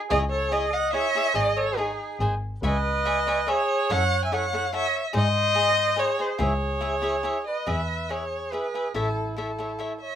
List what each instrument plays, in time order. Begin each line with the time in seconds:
0.08 double bass C#2, cavaquinho E4 G#4 C#5 D#5, trumpet G#4, violin D#5
0.30 trumpet A4, violin C#5
0.49 cavaquinho E4 G#4 C#5 D#5, trumpet G#4, violin D#5
0.71 trumpet D#5, violin F#5
0.93 cavaquinho E4 G#4 C#5 D#5, trumpet C#5, violin E5
1.15 cavaquinho E4 G#4 C#5 D#5
1.34 double bass G#1, cavaquinho D#4 G#4 C#5 D#5, trumpet G#4, violin D#5
1.57 trumpet A4, violin C#5
1.77 cavaquinho D#4 G#4 C#5 D#5, trumpet D#4, violin G#4
2.20 double bass G#1, cavaquinho G#4 C5 D#5 G#5
2.62 double bass C#2, trumpet B4, cavaquinho C#5 E5 G#5 B5, violin D#5
3.05 cavaquinho C#5 E5 G#5 B5
3.27 cavaquinho C#5 E5 G#5 B5
3.47 trumpet G#4, cavaquinho C#5 E5 G#5 B5, violin C#5
3.90 double bass F#2, cavaquinho E4 A4 C#5 F#5, trumpet C#5, violin F#5
4.24 trumpet E5, violin G#5
4.32 cavaquinho E4 A4 C#5 F#5, trumpet C#5, violin F#5
4.53 cavaquinho E4 A4 C#5 F#5
4.73 cavaquinho E4 A4 C#5 F#5, trumpet C#5, violin E5
5.13 double bass G#2, cavaquinho D#4 G#4 C5 D#5, trumpet C5
5.17 violin D#5
5.54 cavaquinho D#4 G#4 C5 D#5
5.96 cavaquinho D#4 G#4 C5 D#5, trumpet G#4, violin C#5
6.18 cavaquinho D#4 G#4 C5 D#5, trumpet G#4, violin C5
6.38 double bass C#2, cavaquinho E4 G#4 C#5 E5, trumpet G#4, violin C#5
6.81 cavaquinho E4 G#4 C#5 E5
7.02 cavaquinho E4 G#4 C#5 E5
7.23 cavaquinho E4 G#4 C#5 E5
7.47 trumpet B4, violin D#5
7.66 double bass E2, cavaquinho E4 G#4 B4 E5, trumpet B4, violin E5
8.09 cavaquinho E4 G#4 B4 E5, trumpet G#4, violin C#5
8.52 cavaquinho E4 G#4 B4 E5, trumpet G#4, violin B4
8.74 cavaquinho E4 G#4 B4 E5
8.94 double bass A1, cavaquinho E4 A4 C#5 E5, trumpet E4, violin A4
9.37 cavaquinho E4 A4 C#5 E5, trumpet E4, violin A4
9.58 cavaquinho E4 A4 C#5 E5
9.79 cavaquinho E4 A4 C#5 E5
10.01 trumpet C#5, violin E5